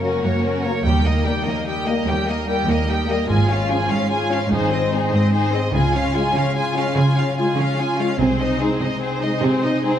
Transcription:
Already playing: F#2 C#3 A#3 F#4 A#4 C#5
0.01 F#3 A#3 C#4 F#4 A#4
0.23 F#2 A#3 F#4 A#4 C#5
0.44 C#4 F#4 A#4
0.63 F#3 A#3 C#4 A#4 C#5
0.85 D#2 D#3 G3 G4 G5
1.05 A#3 D#4 A#4 D#5
1.24 G3 A#3 G4 G5
1.44 D#2 A#3 A#4 D#5
1.67 G3 G4 D#5 G5
1.86 G3 A#3 G4 A#4 D#5
2.07 D#2 G3 A#3 G4 G5
2.28 A#3 D#4 A#4 D#5
2.47 G3 A#3 G4 G5
2.68 D#2 A#3 A#4 D#5
2.89 G3 G4 D#5 G5
3.07 G3 A#3 G4 A#4 D#5
3.29 G#1 G#2 F4 G#4 G#5
3.49 C#4 F4 F5
3.69 F3 C#4 F4 G#4 G#5
3.90 G#2 C#4 F4 G#4 F5
4.10 F4 G#4 C#5 G#5
4.30 F3 C#4 F4 F5
4.51 G#1 G#2 D#4 G#4 C5
4.71 C4 C5 D#5
4.91 G#3 C4 D#4 G#4 C5
5.12 G#2 C4 G#4 C5 D#5
5.32 D#4 G#4 C5
5.52 G#3 C4 D#4 C5 D#5
5.73 C#2 C#3 F4 G#4 G#5
5.93 G#3 C#4 F4 F5
6.14 G#3 F4 G#4 G#5
6.35 C#3 C#4 F4 G#4 F5
6.55 F4 G#4 G#5
6.75 G#3 C#4 F4 F5
6.96 C#3 C#4 F4 G#4 G#5
7.16 G#3 C#4 F4 F5
7.37 G#3 F4 G#4 G#5
7.58 C#3 C#4 F4 G#4 F5
7.76 F4 G#4 G#5
7.97 G#3 C#4 F4 F5
8.17 C2 C3 C4 G#4 C5
8.39 G#3 D#4 C5 D#5
8.59 G#3 C4 D#4 G#4 C5
8.80 C3 D#4 G#4 C5 D#5
8.99 C4 D#4 G#4 C5
9.19 G#3 D#4 C5 D#5
9.23 G#3 D#4
9.40 C3 C4 G#4 C5
9.61 C4 D#4 C5 D#5
9.82 G#3 C4 D#4 G#4 C5

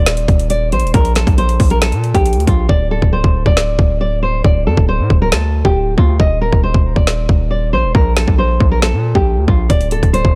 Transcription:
Already playing: D#1 D5
0.06 snare, closed hi-hat
0.17 closed hi-hat
0.28 D#1, kick, closed hi-hat
0.39 closed hi-hat
0.50 D5, closed hi-hat
0.72 A#1 C5, closed hi-hat
0.80 D#1, closed hi-hat
0.87 closed hi-hat
0.94 A#1 A#4, kick, closed hi-hat
1.05 closed hi-hat
1.15 A4, snare, closed hi-hat
1.27 A#1, kick, closed hi-hat
1.38 C5, closed hi-hat
1.49 closed hi-hat
1.60 A#1, kick, open hi-hat
1.70 A#4, closed hi-hat
1.82 A4, snare, closed hi-hat
1.92 A#2, closed hi-hat
2.04 closed hi-hat
2.14 A#1 G4, kick, closed hi-hat
2.26 closed hi-hat
2.33 D2, closed hi-hat
2.40 closed hi-hat
2.47 A#1 F4, kick, closed hi-hat
2.69 D1 D5, kick
2.91 A4
3.02 D1, kick
3.13 C5
3.24 D1, kick
3.46 D1 D5, kick
3.57 snare
3.79 D1, kick
4.01 D5
4.23 C5
4.44 D1 D5, kick
4.66 F2 A4
4.77 D1, kick
4.88 C5
4.99 A2
5.10 D1, kick
5.22 A#4
5.32 D2 A4, snare
5.65 D1 G4, kick
5.98 D2 F4, kick
6.20 D#1 D#5, kick
6.41 A#4
6.53 D#1, kick
6.63 C5
6.74 D#1, kick
6.96 D#1 D5, kick
7.07 snare
7.29 D#1, kick
7.51 D5
7.73 A#1 C5
7.84 D#1
7.95 A#1 A#4, kick
8.16 A4, snare
8.28 A#1, kick
8.38 C5
8.60 A#1, kick
8.72 A#4
8.82 A4, snare
8.93 A#2
9.15 A#1 G4, kick
9.37 D2
9.48 A#1 F4, kick
9.69 D1 D5, kick, closed hi-hat
9.81 closed hi-hat
9.91 A4, closed hi-hat
10.03 D1, kick, closed hi-hat
10.13 C5, closed hi-hat
10.25 D1, kick

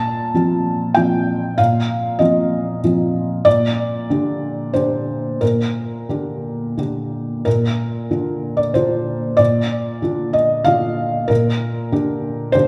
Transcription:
Already playing: A#2 A5
0.34 F3 C4 F4
0.94 F3 C4 F4 G5
1.58 A#2 F5
2.19 F3 C4 F4 D#5
2.84 F3 C4 F4
3.45 A#2 D5
4.10 D3 D4 G4
4.74 D3 D4 G4 C5
5.41 A#2 A#4
6.09 D3 D4 G4
6.77 D3 D4 G4
7.45 A#2 A#4
8.11 D3 D4 F4
8.57 D5
8.74 D3 D4 F4 C5
9.37 A#2 D5
10.02 D3 D4 F4
10.33 D#5
10.64 D3 D4 F4 F5
11.28 A#2 A#4
11.92 D3 D4 G4
12.52 D3 D4 G4 C5

